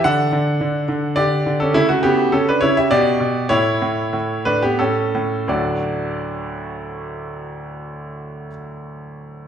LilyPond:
<<
  \new Staff \with { instrumentName = "Grand piano" } { \time 3/4 \key d \major \tempo 4 = 93 <a' fis''>2 <g' d''>8. <cis' a'>16 | <a e'>16 <a fis'>16 <b g'>8 <cis' a'>16 <d' b'>16 <e' cis''>16 <g' e''>16 <g' d''>4 | <e' cis''>4. <d' b'>16 <b g'>16 <cis' a'>4 | <d, a, fis a d' fis' d''>2.~ |
<d, a, fis a d' fis' d''>2. | }
  \new Staff \with { instrumentName = "Grand piano" } { \clef bass \time 3/4 \key d \major d8 d8 d8 d8 d8 d8 | cis8 cis8 cis8 cis8 b,8 b,8 | a,8 a,8 a,8 a,8 a,8 a,8 | r2. |
r2. | }
>>